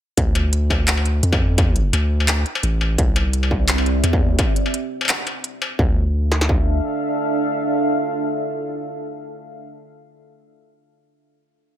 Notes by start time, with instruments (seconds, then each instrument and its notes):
0.17 808-style bass D2, kick, closed hi-hat
0.35 closed hi-hat, struck metal
0.53 closed hi-hat
0.70 kick, struck metal
0.88 clap, closed hi-hat
0.97 struck metal
1.05 closed hi-hat
1.23 808-style bass F2, closed hi-hat
1.33 kick, struck metal
1.58 kick, closed hi-hat, struck metal
1.76 closed hi-hat
1.93 808-style bass D2, closed hi-hat, struck metal
2.20 struck metal
2.28 clap, closed hi-hat
2.46 closed hi-hat
2.55 struck metal
2.63 808-style bass A1, closed hi-hat
2.81 struck metal
2.98 808-style bass C2, ambient pad C4, kick, closed hi-hat
3.06 ambient pad G4 D5
3.16 closed hi-hat, struck metal
3.33 closed hi-hat
3.43 struck metal
3.51 kick
3.69 clap, closed hi-hat
3.78 struck metal
3.86 closed hi-hat
4.03 808-style bass E2, closed hi-hat, struck metal
4.13 kick
4.39 kick, closed hi-hat, struck metal
4.56 closed hi-hat
4.66 struck metal
4.74 closed hi-hat
5.01 struck metal
5.05 clap, closed hi-hat, struck metal
5.09 struck metal
5.27 closed hi-hat, struck metal
5.44 closed hi-hat
5.62 struck metal
5.79 808-style bass D2, ambient pad D4, kick
5.84 ambient pad A4
5.90 ambient pad E5
5.95 ambient pad F5
6.32 snare
6.41 snare
6.49 kick